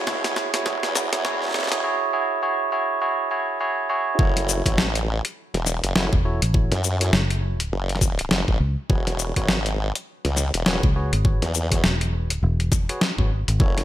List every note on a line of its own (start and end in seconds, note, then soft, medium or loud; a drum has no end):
0.07 0.35 C#2 loud
0.07 0.50 E4 medium
0.07 0.50 F#4 medium
0.07 0.50 G#4 medium
0.07 0.50 C#5 loud
0.07 kick loud
0.07 snare loud
0.24 snare medium
0.24 closed hi-hat medium
0.36 snare medium
0.54 0.64 E4 medium
0.54 0.64 F#4 medium
0.54 0.64 G#4 medium
0.54 0.64 C#5 loud
0.54 snare medium
0.54 closed hi-hat medium
0.66 0.81 E1 loud
0.66 1.09 E4 loud
0.66 1.09 F#4 medium
0.66 1.09 G#4 medium
0.66 1.09 C#5 loud
0.66 kick loud
0.66 snare medium
0.83 1.10 E2 loud
0.83 snare medium
0.83 closed hi-hat soft
0.95 snare loud
0.95 shaker medium
1.13 1.52 E2 loud
1.13 1.23 E4 medium
1.13 1.23 F#4 medium
1.13 1.23 G#4 medium
1.13 1.23 C#5 loud
1.13 snare medium
1.13 closed hi-hat medium
1.25 1.67 E4 loud
1.25 1.67 F#4 medium
1.25 1.67 G#4 medium
1.25 1.68 C#5 loud
1.25 kick loud
1.25 snare loud
1.42 snare soft
1.45 snare soft
1.48 snare soft
1.51 snare medium
1.54 1.82 E1 loud
1.54 snare loud
1.59 snare medium
1.63 snare medium
1.67 snare medium
1.72 1.82 E4 loud
1.72 1.82 F#4 medium
1.72 1.82 G#4 medium
1.72 1.82 C#5 loud
1.72 snare medium
1.72 closed hi-hat medium
1.84 2.11 E4 medium
1.84 2.11 F#4 medium
1.84 2.11 G#4 medium
1.84 2.11 C#5 loud
2.13 2.41 E4 loud
2.13 2.41 F#4 medium
2.13 2.41 G#4 medium
2.13 2.41 C#5 loud
2.43 2.70 E4 loud
2.43 2.70 F#4 medium
2.43 2.70 G#4 medium
2.43 2.70 C#5 loud
2.72 3.00 E4 loud
2.72 3.00 F#4 medium
2.72 3.00 G#4 medium
2.72 3.00 C#5 loud
3.02 3.29 E4 loud
3.02 3.29 F#4 medium
3.02 3.29 G#4 medium
3.02 3.29 C#5 loud
3.31 3.58 E4 loud
3.31 3.58 F#4 medium
3.31 3.58 G#4 medium
3.31 3.58 C#5 loud
3.61 3.88 E4 loud
3.61 3.88 F#4 medium
3.61 3.88 G#4 medium
3.61 3.88 C#5 loud
3.90 4.17 E4 loud
3.90 4.17 F#4 medium
3.90 4.17 G#4 medium
3.90 4.17 C#5 loud
4.19 4.63 F#1 loud
4.19 4.62 E4 medium
4.19 4.62 F#4 medium
4.19 4.62 A4 medium
4.19 4.62 C#5 loud
4.19 kick loud
4.37 snare soft
4.37 closed hi-hat medium
4.49 shaker medium
4.66 5.22 A1 medium
4.66 4.85 E4 medium
4.66 4.85 F#4 medium
4.66 4.85 A4 medium
4.66 4.85 C#5 loud
4.66 kick medium
4.66 closed hi-hat medium
4.78 snare loud
4.95 closed hi-hat medium
5.25 closed hi-hat medium
5.54 5.81 E1 loud
5.54 snare soft
5.54 closed hi-hat soft
5.66 snare medium
5.66 shaker medium
5.83 5.94 F#1 medium
5.83 closed hi-hat medium
5.95 6.10 F#1 loud
5.95 6.18 E4 loud
5.95 6.18 F#4 medium
5.95 6.18 A4 medium
5.95 6.18 C#5 loud
5.95 snare loud
6.13 6.39 E1 loud
6.13 kick loud
6.25 6.40 E4 loud
6.25 6.40 F#4 medium
6.25 6.40 A4 medium
6.25 6.40 C#5 loud
6.42 6.69 A1 loud
6.42 closed hi-hat medium
6.54 6.77 E4 medium
6.54 6.76 F#4 medium
6.54 6.76 A4 medium
6.54 6.76 C#5 medium
6.54 kick loud
6.72 7.11 F#2 loud
6.72 snare soft
6.72 closed hi-hat medium
6.84 shaker medium
7.01 7.20 E4 medium
7.01 7.20 F#4 medium
7.01 7.20 A4 medium
7.01 7.20 C#5 medium
7.01 closed hi-hat medium
7.13 7.70 F#1 medium
7.13 snare loud
7.30 closed hi-hat medium
7.60 closed hi-hat medium
7.72 8.29 F#1 loud
7.89 closed hi-hat soft
7.95 snare medium
8.01 kick loud
8.01 shaker medium
8.19 closed hi-hat medium
8.31 8.45 F#1 loud
8.31 snare loud
8.48 8.58 A1 loud
8.48 kick medium
8.60 8.75 C#2 loud
8.90 9.34 E1 loud
8.90 9.32 F#4 loud
8.90 9.32 G#4 medium
8.90 9.32 B4 medium
8.90 9.32 C#5 loud
8.90 kick loud
9.07 snare soft
9.07 closed hi-hat medium
9.19 shaker medium
9.36 9.92 G#1 loud
9.36 9.55 F#4 medium
9.36 9.55 G#4 medium
9.36 9.55 B4 medium
9.36 9.55 C#5 loud
9.36 kick medium
9.36 closed hi-hat medium
9.48 snare loud
9.66 closed hi-hat medium
9.95 closed hi-hat medium
10.25 10.51 C#2 loud
10.25 snare soft
10.25 closed hi-hat soft
10.37 snare medium
10.37 shaker medium
10.54 10.64 E1 loud
10.54 closed hi-hat medium
10.66 10.81 E1 loud
10.66 10.88 F#4 loud
10.66 10.88 G#4 medium
10.66 10.88 B4 medium
10.66 10.88 C#5 loud
10.66 snare loud
10.83 11.10 C#2 medium
10.83 kick loud
10.96 11.11 F#4 loud
10.96 11.11 G#4 medium
10.96 11.11 B4 medium
10.96 11.11 C#5 loud
11.13 11.40 G#1 loud
11.13 closed hi-hat medium
11.25 11.47 F#4 medium
11.25 11.47 G#4 medium
11.25 11.47 B4 medium
11.25 11.47 C#5 medium
11.25 kick loud
11.42 11.82 E2 loud
11.42 snare soft
11.42 closed hi-hat medium
11.54 shaker medium
11.72 11.91 F#4 medium
11.72 11.91 G#4 medium
11.72 11.91 B4 medium
11.72 11.91 C#5 medium
11.72 kick medium
11.72 closed hi-hat medium
11.84 12.24 E1 loud
11.84 snare loud
12.01 closed hi-hat medium
12.24 12.41 D#1 loud
12.30 closed hi-hat medium
12.43 12.87 E1 medium
12.60 closed hi-hat soft
12.72 kick loud
12.72 snare medium
12.72 shaker medium
12.89 13.00 F#4 medium
12.89 13.00 G#4 medium
12.89 13.00 B4 medium
12.89 13.00 C#5 loud
12.89 closed hi-hat medium
13.01 snare loud
13.18 13.45 G#1 loud
13.18 13.29 F#4 medium
13.18 13.29 G#4 medium
13.18 13.29 B4 medium
13.18 13.29 C#5 medium
13.18 kick medium
13.48 13.58 G#1 medium
13.48 closed hi-hat medium
13.60 13.84 F#1 loud
13.60 13.84 E4 medium
13.60 13.84 F#4 medium
13.60 13.84 A4 medium
13.60 13.84 C#5 loud
13.60 kick loud
13.78 snare soft
13.78 closed hi-hat medium